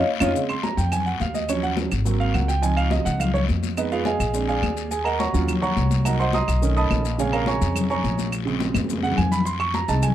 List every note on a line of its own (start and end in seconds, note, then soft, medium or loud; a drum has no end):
0.20 0.31 F2 medium
0.20 0.30 C#4 loud
0.20 0.30 D#4 loud
0.20 0.30 F4 loud
0.20 0.30 C#5 loud
0.20 0.30 D#5 medium
0.20 0.30 F5 loud
0.20 high conga loud
0.20 long guiro loud
0.20 claves loud
0.20 maracas loud
0.34 0.54 C#3 medium
0.34 0.54 G#3 soft
0.34 0.54 C4 medium
0.34 high conga soft
0.34 long guiro medium
0.34 maracas medium
0.49 0.63 C6 medium
0.49 high conga soft
0.49 claves medium
0.49 maracas soft
0.63 0.77 A#5 medium
0.63 high conga loud
0.63 short guiro medium
0.63 maracas soft
0.77 1.17 F2 medium
0.77 0.91 G5 medium
0.77 high conga soft
0.77 short guiro medium
0.77 maracas medium
0.92 1.06 G#5 loud
0.92 high conga soft
0.92 low conga medium
0.92 long guiro medium
0.92 claves medium
0.92 maracas medium
1.06 1.20 F#5 medium
1.06 high conga soft
1.06 maracas soft
1.20 1.86 D#2 medium
1.20 1.34 F5 medium
1.20 high conga medium
1.20 short guiro medium
1.20 maracas soft
1.34 1.48 D#5 medium
1.34 high conga medium
1.34 short guiro medium
1.34 maracas medium
1.48 1.89 F3 soft
1.48 1.90 F#3 soft
1.48 1.90 C#4 medium
1.48 1.63 C#5 medium
1.48 high conga soft
1.48 long guiro medium
1.48 claves medium
1.48 maracas medium
1.63 1.72 F#5 medium
1.63 high conga soft
1.63 maracas soft
1.77 high conga medium
1.77 short guiro medium
1.77 maracas soft
1.91 2.32 G#1 medium
1.91 high conga soft
1.91 short guiro medium
1.91 claves medium
1.91 maracas medium
2.05 2.46 F#3 medium
2.05 2.47 A#3 medium
2.05 2.47 C4 medium
2.05 high conga soft
2.05 long guiro medium
2.05 maracas medium
2.20 2.34 F5 medium
2.20 high conga soft
2.20 maracas soft
2.34 3.00 C#2 medium
2.34 2.48 F#5 medium
2.34 high conga medium
2.34 short guiro medium
2.34 claves medium
2.34 maracas soft
2.48 2.62 G5 loud
2.48 short guiro medium
2.48 maracas medium
2.62 3.72 F3 medium
2.62 3.73 C4 soft
2.62 3.73 D#4 medium
2.62 2.77 G#5 loud
2.62 high conga soft
2.62 long guiro medium
2.62 maracas medium
2.77 2.91 F5 medium
2.77 high conga soft
2.77 claves medium
2.77 maracas soft
2.91 3.05 D#5 medium
2.91 high conga loud
2.91 short guiro medium
2.91 maracas soft
3.05 3.46 C#2 loud
3.05 3.19 F#5 loud
3.05 high conga soft
3.05 short guiro medium
3.05 maracas medium
3.20 3.34 F5 medium
3.20 high conga soft
3.20 low conga medium
3.20 long guiro medium
3.20 claves medium
3.20 maracas medium
3.34 3.43 C#5 medium
3.34 high conga soft
3.34 low conga medium
3.34 maracas soft
3.49 4.15 F2 medium
3.49 high conga medium
3.49 short guiro medium
3.49 maracas soft
3.63 high conga medium
3.63 short guiro medium
3.63 maracas medium
3.77 4.18 G#3 medium
3.77 4.18 B3 soft
3.77 3.91 D#4 medium
3.77 3.90 G#4 medium
3.77 3.91 B4 medium
3.77 3.91 D#5 medium
3.77 high conga soft
3.77 long guiro medium
3.77 claves medium
3.77 maracas medium
3.91 4.06 F4 medium
3.91 4.04 G#4 medium
3.91 4.06 B4 medium
3.91 4.04 F5 medium
3.91 high conga soft
3.91 maracas soft
4.05 4.46 G#4 medium
4.05 4.32 D#5 medium
4.05 4.46 F5 medium
4.05 4.45 G#5 medium
4.05 high conga loud
4.05 short guiro medium
4.05 maracas soft
4.19 4.60 A#1 medium
4.19 high conga soft
4.19 short guiro medium
4.19 claves medium
4.19 maracas medium
4.33 4.53 G#3 medium
4.33 4.53 C4 medium
4.33 4.53 D4 medium
4.33 high conga soft
4.33 long guiro medium
4.33 maracas medium
4.48 4.88 G#4 medium
4.48 4.88 D5 medium
4.48 4.88 F5 medium
4.48 4.88 G#5 medium
4.48 high conga soft
4.48 maracas soft
4.62 5.28 D#2 medium
4.62 high conga medium
4.62 short guiro medium
4.62 claves medium
4.62 maracas soft
4.77 short guiro medium
4.77 maracas medium
4.91 5.05 G#4 medium
4.91 5.05 G#5 medium
4.91 high conga soft
4.91 long guiro medium
4.91 maracas medium
5.05 5.19 A#4 medium
5.05 5.19 D#5 medium
5.05 5.18 F#5 medium
5.05 5.18 A#5 medium
5.05 high conga soft
5.05 claves medium
5.05 maracas soft
5.19 5.59 C#5 medium
5.19 5.59 F#5 medium
5.19 5.59 A#5 medium
5.19 5.59 C#6 medium
5.19 high conga loud
5.19 short guiro medium
5.19 maracas soft
5.33 5.74 D#2 loud
5.33 5.52 F#3 medium
5.33 5.53 C#4 soft
5.33 5.53 F4 medium
5.33 high conga soft
5.33 short guiro medium
5.33 maracas medium
5.48 high conga soft
5.48 low conga medium
5.48 long guiro medium
5.48 claves medium
5.48 maracas medium
5.62 6.02 C#5 medium
5.62 6.02 F#5 medium
5.62 6.02 A#5 medium
5.62 6.02 C#6 medium
5.62 high conga soft
5.62 low conga medium
5.62 maracas soft
5.77 6.42 C2 medium
5.77 high conga medium
5.77 short guiro medium
5.77 maracas soft
5.91 high conga medium
5.91 short guiro medium
5.91 maracas medium
6.04 6.24 F#3 medium
6.04 6.24 A#3 soft
6.04 6.24 D#4 medium
6.04 6.19 A#4 medium
6.04 6.18 D#5 medium
6.04 6.19 F#5 medium
6.04 6.19 A#5 medium
6.04 high conga soft
6.04 long guiro medium
6.04 claves medium
6.04 maracas medium
6.19 6.33 C5 medium
6.19 6.33 D#5 medium
6.19 6.34 F#5 medium
6.19 6.33 C6 loud
6.19 high conga soft
6.19 maracas soft
6.33 6.74 D#5 medium
6.33 6.61 A#5 medium
6.33 6.61 C6 medium
6.33 6.74 D#6 medium
6.33 high conga loud
6.33 short guiro medium
6.33 maracas soft
6.48 6.88 B1 loud
6.48 high conga soft
6.48 short guiro medium
6.48 claves medium
6.48 maracas medium
6.62 7.02 D#3 medium
6.62 7.03 A3 medium
6.62 7.03 C#4 medium
6.62 high conga soft
6.62 long guiro medium
6.62 maracas medium
6.76 7.16 D#5 medium
6.76 7.16 A5 medium
6.76 7.16 B5 medium
6.76 7.16 D#6 medium
6.76 high conga soft
6.76 maracas soft
6.90 7.56 A#1 medium
6.90 high conga medium
6.90 short guiro medium
6.90 claves medium
6.90 maracas soft
7.05 short guiro medium
7.05 maracas medium
7.18 8.29 C3 medium
7.18 8.28 C#3 medium
7.18 8.29 G#3 medium
7.18 7.33 G#4 medium
7.18 7.32 C#5 medium
7.18 7.32 F5 medium
7.18 7.33 G#5 medium
7.18 long guiro medium
7.18 maracas medium
7.33 7.47 A#4 medium
7.33 7.46 C#5 medium
7.33 7.47 F5 medium
7.33 7.46 A#5 medium
7.33 high conga soft
7.33 claves medium
7.33 maracas soft
7.46 7.87 C#5 medium
7.46 7.87 G#5 medium
7.46 7.87 A#5 medium
7.46 7.87 C#6 medium
7.46 high conga loud
7.46 short guiro medium
7.46 maracas soft
7.61 8.01 F2 loud
7.61 high conga soft
7.61 short guiro medium
7.61 maracas medium
7.75 high conga soft
7.75 low conga medium
7.75 long guiro medium
7.75 claves medium
7.75 maracas medium
7.90 8.30 C#5 medium
7.90 8.30 G#5 medium
7.90 8.30 A#5 medium
7.90 8.30 C#6 medium
7.90 high conga soft
7.90 low conga medium
7.90 maracas soft
8.04 8.69 A#1 loud
8.04 high conga medium
8.04 short guiro medium
8.04 maracas soft
8.18 high conga medium
8.18 short guiro medium
8.18 maracas medium
8.32 high conga soft
8.32 long guiro medium
8.32 claves medium
8.32 maracas medium
8.45 9.01 C#3 medium
8.45 9.02 G#3 medium
8.45 9.02 C4 medium
8.45 high conga soft
8.45 maracas soft
8.60 high conga loud
8.60 short guiro medium
8.60 maracas soft
8.74 9.15 F2 loud
8.74 high conga loud
8.74 short guiro medium
8.74 claves medium
8.74 maracas medium
8.84 high conga medium
8.89 long guiro medium
8.89 maracas medium
8.93 high conga loud
9.03 9.16 C#3 soft
9.03 9.16 G#3 soft
9.03 9.16 C4 medium
9.03 9.17 F#5 loud
9.03 high conga medium
9.03 maracas soft
9.12 low conga loud
9.17 9.83 F2 medium
9.17 9.31 G#5 medium
9.17 short guiro medium
9.17 claves medium
9.17 maracas soft
9.21 low conga medium
9.31 9.46 B5 loud
9.31 low conga medium
9.31 short guiro medium
9.31 maracas medium
9.41 low conga medium
9.45 9.60 C6 medium
9.45 high conga soft
9.45 long guiro medium
9.45 maracas medium
9.59 9.74 C#6 loud
9.59 high conga soft
9.59 claves medium
9.59 maracas soft
9.74 9.88 A#5 medium
9.74 high conga loud
9.74 short guiro medium
9.74 maracas soft
9.88 10.15 C2 medium
9.88 10.07 G#3 medium
9.88 10.07 C4 soft
9.88 10.08 D#4 medium
9.88 10.02 A5 loud
9.88 high conga soft
9.88 short guiro medium
9.88 maracas medium
10.03 10.15 G#5 medium
10.03 high conga soft
10.03 low conga medium
10.03 long guiro medium
10.03 claves medium
10.03 maracas medium